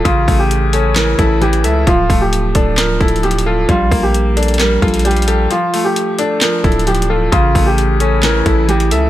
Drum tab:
HH |x-----------o-----------x-----------x-----------x-----------x-----------x-----x-----x-----------|x-----------o-----------x-----------x-----------x-----------x---x---x---x---x---x---------------|x-----------o-----------x-----------x--x--x--x--x-----------x--x--x--x--x--x--x--x--x-----------|x-----------o-----------x-----------x-----------x-----------x---x---x---x---x---x---------------|
CP |------------------------------------------------x-----------------------------------------------|------------------------------------------------x-----------------------------------------------|------------------------------------------------x-----------------------------------------------|------------------------------------------------x-----------------------------------------------|
SD |------------------------------------------------o-----------------------------------------------|------------------------------------------------o-----------------------------------------------|------------------------------------------------o-----------------------------------------------|------------------------------------------------o-----------------------------------------------|
BD |o-----------o-----------------------------------------------o-----------------------------------|o-----------o-----------------------o-----------------------o-----------------------------------|o-----------o-----------------------------------------------o-----------------------------------|------------------------------------------------------------o-----------------------------------|

HH |x-----------o-----------x-----------x-----------x-----------x-----------x-----x-----x-----------|
CP |------------------------------------------------x-----------------------------------------------|
SD |------------------------------------------------o-----------------------------------------------|
BD |o-----------o-----------------------------------------------o-----------------------------------|